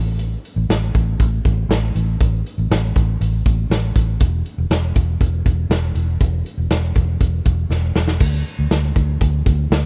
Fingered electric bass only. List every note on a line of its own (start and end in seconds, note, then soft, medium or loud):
0.00 0.35 A1 medium
0.56 0.67 A1 medium
0.69 0.90 A1 medium
0.95 1.15 A1 medium
1.20 1.40 A1 loud
1.45 1.65 A1 medium
1.69 1.90 A1 loud
1.95 2.16 A1 medium
2.20 2.41 A1 loud
2.58 2.68 A1 medium
2.70 2.91 A1 medium
2.96 3.16 A1 medium
3.21 3.41 A1 medium
3.46 3.66 A1 medium
3.70 3.91 A1 medium
3.96 4.16 A1 medium
4.21 4.41 E1 loud
4.58 4.68 E1 medium
4.70 4.91 E1 medium
4.96 5.16 E1 loud
5.21 5.41 E1 medium
5.46 5.66 E1 medium
5.70 5.91 E1 loud
5.95 6.16 E1 medium
6.21 6.41 E1 loud
6.58 6.68 E1 medium
6.70 6.91 E1 medium
6.96 7.16 E1 medium
7.21 7.42 E1 medium
7.45 7.66 E1 medium
7.70 7.91 E1 medium
7.95 8.16 E1 medium
8.21 8.42 D2 medium
8.59 8.69 D2 medium
8.71 8.92 D2 medium
8.96 9.17 D2 medium
9.21 9.42 D2 loud
9.46 9.67 D2 medium
9.71 9.86 D2 loud